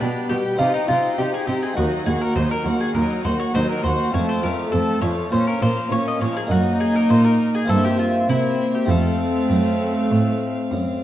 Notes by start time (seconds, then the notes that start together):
Already playing: B3 G4
0.00 B2 B3 D4 G4 B5
0.29 B2 G3 G4 B4 G5
0.56 C3 C4 D#4 F4 G4 D#5
0.61 C3
0.74 D#4
0.88 C3 C4 D#4 F4 G5
1.18 C3 D#4 G4 D#5
1.34 G#4
1.47 C3 C4 D#4 G4 G5
1.63 G#4
1.73 A#3 D#4 F#4
1.78 D#2 F#3 D#4 D#5
2.06 D#2 A#3 F#4 G#4 F#5
2.21 A#4
2.36 D#2 F#3 D#4 C5 D#5
2.51 A#4
2.66 D#2 A#3 F#4 F#5
2.80 G#4
2.95 D#2 F#3 D#4 A#4 D#5
3.25 D#2 A#3 F#4 C5 F#5
3.39 C#5
3.54 D#2 F#3 D#4 C5 D#5
3.69 A#4
3.83 D#2 A#3 F#4 C5 F#5
4.10 C4 F4
4.14 F2 A3 C#5 A5
4.29 C5
4.43 F2 F3 A3 A#4 F5
4.72 F2 A3 C4 A4 A5
5.01 F2 F3 A3 C#5 F5
5.29 A#2 A#3 C#4 F4 C5 C#5
5.47 A#4
5.62 A#2 F3 A#3 C5 F5
5.91 A#2 A#3 C#4 C#5
6.08 D#5
6.21 A#2 F3 A#3 C#5 F5
6.37 G#4
6.46 F#2 A#3 D#4
6.51 F#2 A#3 F#4 D#5
6.80 G#4
6.95 A#4
7.10 A#2 C5
7.24 A#4
7.55 G#4
7.64 A#3 C4 E4
7.69 G2 A#3 C4 A4 E5
7.85 G4
7.99 F4
8.29 C3 A#3 C4 E4 E5
8.75 G4
8.85 A3 C4 F4
8.89 F2 A3 C4 A4 F5
9.51 F#2
10.11 A2
10.72 F#2